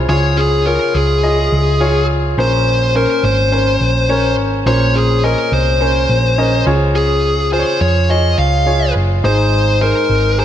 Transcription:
Already playing: C#3 E4 F4 G#4 C5 C#5 D#5
0.09 C#2 F4 G#4 C#5
0.38 G#4
0.66 F4 G#4 A#4 C#5
0.94 C#2 G#4
1.23 F4 G#4 D#5
1.52 C#2
1.81 F4 G#4 C#5
2.38 A#1 A#2 C#4 A#4 C5
2.95 C#4 A#4 C5
3.23 G#1 C5
3.52 C#4 A#4 C5
3.81 A#1
4.09 C#4 A#4 C#5
4.38 G#1
4.66 A#1 A#2 C#4 A#4 C5 C#5
4.96 G#4
5.23 C#4 A#4 D#5
5.52 C2 C5
5.81 C#4 A#4 C5
6.09 A#1
6.38 C#4 A#4 D#5
6.66 C#2 C#3 F4 G#4 C#5
6.96 G#4
7.52 F4 G#4 C5
7.59 C#5
7.81 F2 C#5
8.09 F4 G#4 C#5 D#5
8.38 C#2 F5
8.66 F4 G#4 C#5
8.96 F#1
9.24 G#1 G#2 D#4 G#4 C5
9.81 D#4 G#4 A#4 C5
10.10 G#1
10.38 D#4 G#4 A#4 C5

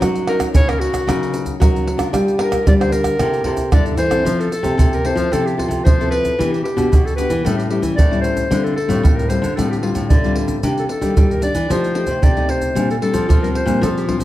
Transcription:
Already playing: C#4 D#4 A#4
0.01 F#3, pandeiro, tamborim, shaker, surdo
0.15 pandeiro, shaker
0.27 C#4 D#4 A#4, pandeiro, tamborim
0.40 pandeiro, tamborim, shaker, surdo
0.54 C#3 C#5, pandeiro, shaker, surdo
0.68 C#4 D#4 A#4, pandeiro, tamborim, shaker
0.80 F#4, pandeiro
0.94 pandeiro, tamborim, shaker, surdo
1.07 C#3 F#3 C#4 D#4 A#4, pandeiro, tamborim, shaker, surdo
1.23 pandeiro, shaker
1.34 pandeiro, shaker
1.46 pandeiro, shaker, surdo
1.60 C#3 F#3 C#4 D#4 A#4, pandeiro, tamborim, shaker, surdo
1.76 pandeiro, shaker
1.87 pandeiro
1.97 D4 F4 A#4, pandeiro, tamborim, shaker, surdo
2.13 G3, pandeiro, tamborim, shaker, surdo
2.28 pandeiro, shaker
2.38 D4 F4 A#4, pandeiro, tamborim
2.52 pandeiro, tamborim, shaker, surdo
2.66 D3 G3 D5, pandeiro, shaker, surdo
2.80 D4 F4 A#4 C5, pandeiro, tamborim, shaker
2.92 A#4, pandeiro, shaker
3.04 pandeiro, tamborim, shaker, surdo
3.19 C3 A#3 E4 A4, pandeiro, tamborim, shaker, surdo
3.33 pandeiro, shaker
3.44 C3 A#3 E4 A4, pandeiro, surdo
3.57 pandeiro, shaker, surdo
3.72 G2 D3 A#3 E4 A4 D5, pandeiro, tamborim, shaker, surdo
3.86 pandeiro, shaker
3.97 E3 C5, pandeiro, shaker
4.10 C4 E4 A4, pandeiro, tamborim, shaker, surdo
4.25 F3, pandeiro, shaker, surdo
4.40 A4, pandeiro, shaker
4.52 A4, pandeiro, shaker
4.63 C3 C4 E4 A4, pandeiro, shaker, surdo
4.78 C3, pandeiro, shaker, surdo
4.93 A#4, pandeiro, shaker
5.04 C4 E4 A4 C5, pandeiro
5.15 F3, pandeiro, shaker, surdo
5.32 C3 F3 C4 E4 A4, pandeiro, shaker, surdo
5.46 G4, pandeiro, shaker
5.57 C4 E4 F4 A4, pandeiro, surdo
5.68 C3, pandeiro, shaker, surdo
5.84 C3 F3 C5, pandeiro, shaker, surdo
6.00 C4 E4 A4, pandeiro, shaker
6.10 B4, pandeiro
6.25 pandeiro, shaker, surdo
6.38 E3 B3 D4 G4, pandeiro, shaker, surdo
6.52 G4, pandeiro, shaker
6.64 G4, pandeiro
6.76 B2 B3 D4 G4, pandeiro, shaker, surdo
6.92 B2, pandeiro, shaker, surdo
7.05 A4, pandeiro, shaker
7.16 B3 D4 G4 B4, pandeiro, shaker
7.30 E3, pandeiro, shaker, surdo
7.45 A2 G3 C#4 E4 A4, pandeiro, shaker, surdo
7.57 G4, pandeiro, shaker
7.70 G3 C#4 E4 G4, pandeiro
7.82 E3, pandeiro, shaker, surdo
7.96 A2 E3 D5, pandeiro, shaker, surdo
8.11 G3 C#4 E4, pandeiro, shaker
8.21 C5, pandeiro, shaker
8.37 pandeiro, shaker, surdo
8.50 D3 G3 C4 F4, pandeiro, shaker, surdo
8.64 A4, pandeiro, shaker
8.76 A4, pandeiro
8.88 A2 G3 C4 F4, pandeiro, shaker, surdo
9.03 A2, pandeiro, shaker, surdo
9.16 A#4, pandeiro, shaker
9.29 G3 C4 F4 C5, pandeiro, shaker
9.42 D3, pandeiro, shaker, surdo
9.56 A2 D3 G3 C4 F4 A4, pandeiro, shaker, surdo
9.71 G4, pandeiro, shaker
9.82 G3 C4 F4, pandeiro
9.95 A2, pandeiro, shaker, surdo
10.09 A2 D3 D5, pandeiro, shaker, surdo
10.24 G3 C4 F4, pandeiro, shaker
10.36 pandeiro
10.48 pandeiro, shaker, surdo
10.63 C3 D#3 A#3 D4, pandeiro, shaker, surdo
10.78 A4, pandeiro, shaker
10.89 A4, pandeiro
11.01 D#3 G3 A#3 D4, pandeiro, shaker, surdo
11.16 G2 G3, pandeiro, shaker, surdo
11.31 A#4, pandeiro, shaker
11.42 D#3 A#3 D4 D5, pandeiro, shaker
11.55 E3, pandeiro, shaker, surdo
11.69 F3 A3 D#4 G4 C5, pandeiro, shaker, surdo
11.84 pandeiro, shaker
11.95 A3 D#4 G4, pandeiro
12.07 C3, pandeiro, shaker, surdo
12.22 C3 D5, pandeiro, shaker, surdo
12.37 A3 D#4 G4, pandeiro, shaker
12.49 C5, pandeiro
12.62 pandeiro, shaker, surdo
12.75 A#2 G3 C4 D4, pandeiro, shaker, surdo
12.91 A4, pandeiro, shaker
13.01 G3 C4 D4 A4, pandeiro
13.13 F3, pandeiro, shaker, surdo
13.28 F3, pandeiro, shaker, surdo
13.42 G3 C4 D4 A#4, pandeiro, shaker
13.55 C5, pandeiro
13.66 A#2 G3 C4 D4, pandeiro, shaker, surdo
13.81 A#2 F3 A4, pandeiro, shaker, surdo
13.97 G4, pandeiro, shaker
14.07 G3 C4 D4 F4, pandeiro, surdo
14.19 F3, pandeiro, shaker, surdo

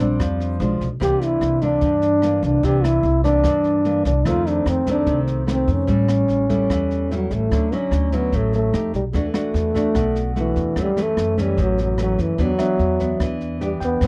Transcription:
Already playing: A#1 A#2 F5 A5
0.00 G3 C4 D4
0.20 F2 F3, kick, cross-stick, snare
0.40 snare
0.60 B1 F3 G#3 D4, snare
0.81 B1, kick, snare
1.00 C2 C3 E3 A#3 D4 G4, kick, cross-stick, snare
1.21 E4, snare
1.41 C2, cross-stick, snare
1.62 E3 A#3 D4, kick, snare
1.81 G2, kick, snare
2.02 snare
2.22 E3 A#3 D4, cross-stick, snare
2.43 C2 D4, kick, snare
2.63 C2 C3 E3 A#3 D4 G4, kick, snare
2.84 E4, cross-stick, snare
3.03 C2, snare
3.24 E3 A#3 D4 D5, kick, snare
3.44 G2, kick, cross-stick, snare
3.64 snare
3.85 E3 A#3 D4, snare
4.05 C2 D4, kick, snare
4.25 F2 D#3 A3 C4 F4, kick, cross-stick, snare
4.47 D4, snare
4.66 F2 C4, cross-stick, snare
4.86 D#3 A3 C4, kick, snare
4.91 D4
5.06 C2 C3, kick, snare
5.27 snare
5.47 D#3 A3 C4, cross-stick, snare
5.53 C4
5.68 F2, kick, snare
5.72 C#4
5.87 A1 A2 G3 C#4 E4, kick, snare
6.08 cross-stick, snare
6.28 A1, snare
6.49 G3 C#4 E4 A4, kick, snare
6.70 E2 E3, kick, cross-stick, snare
6.91 snare
7.11 F#3 G3 C#4 E4, snare
7.31 A1 A3, kick, snare
7.51 D2 D3 F#3 C#4 E4, kick, cross-stick, snare
7.72 F#3 C#4 E4, snare
7.91 D2 C#5, cross-stick, snare
8.12 F#3 B3 C#4 E4, kick, snare
8.32 A1 A2 A3, kick, snare
8.53 A3, snare
8.73 F2 A3 D#4 G4, cross-stick, snare
8.94 B1 G3, kick, snare
9.13 E2 E3 A3 D4 F#4, kick, snare
9.34 A3 D4 F#4, cross-stick, snare
9.54 E2, snare
9.74 A3 D4 F#4, kick, snare
9.95 B1 B2 F#5, kick, cross-stick, snare
10.15 snare
10.36 E3 A3 D4 F#4, snare
10.56 E2, kick, snare
10.76 F#2 E3 A3 C#4, kick, cross-stick, snare
10.81 G3
10.96 E3 A3 C#4, snare
11.02 A3
11.17 F#2, cross-stick, snare
11.37 E3 A3 C#4, kick, snare
11.42 G3
11.57 A1 F#2, kick, snare
11.63 F#3
11.78 snare
11.83 F#3
11.98 E3 A3 C#4, cross-stick, snare
12.03 F#3
12.18 F#2 E3, kick, snare
12.38 E2 E3 B3 D4 G4, kick, snare
12.42 F#3
12.58 B3 D4 E5, cross-stick, snare
12.79 E2, snare
13.00 B3 D4, kick, snare
13.20 E2 E3, kick, cross-stick, snare
13.41 snare
13.61 G3 B3 D4 G4, snare
13.80 E2 G5, kick, snare
13.85 B3
14.01 F#2 F#3 B3 C4, kick, cross-stick, snare

